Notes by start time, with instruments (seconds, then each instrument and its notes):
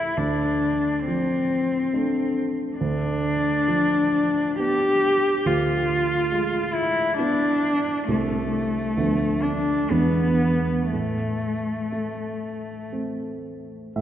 Already playing: grand piano C#2 G3 A3 E4, cello E4
0.17 grand piano D2, cello D4
1.05 grand piano F3, cello C4
1.93 grand piano A3 D4
2.77 grand piano D2, cello D4
3.68 grand piano F3
4.59 grand piano B3 D4, cello G4
5.46 grand piano D2, cello F4
6.32 grand piano G#3
6.73 cello E4
7.18 grand piano B3 E4, cello D4
8.08 grand piano C2 A3 C4 E4, cello A3
8.97 grand piano D2 F3 B3 D4
9.43 cello D4
9.90 grand piano E2 E3 G#3 D4, cello B3
10.92 grand piano A2, cello A3
11.92 grand piano A3
12.92 grand piano A3 C4
13.96 grand piano A2 E5